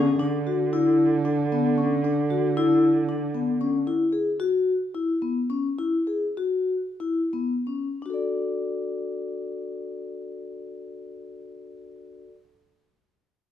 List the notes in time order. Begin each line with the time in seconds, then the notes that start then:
Already playing: D3 G#4
0.19 D3 D4
0.47 F#4
0.73 E4
1.25 D4
1.52 B3
1.78 C#4
2.04 D4
2.30 F#4
2.57 E4
3.09 D4
3.34 B3
3.61 C#4
3.87 E4
4.12 G#4
4.40 F#4
4.95 E4
5.22 B3
5.50 C#4
5.79 E4
6.07 G#4
6.37 F#4
7.00 E4
7.33 B3
7.67 C#4
8.02 D4 F#4
8.10 A4 D5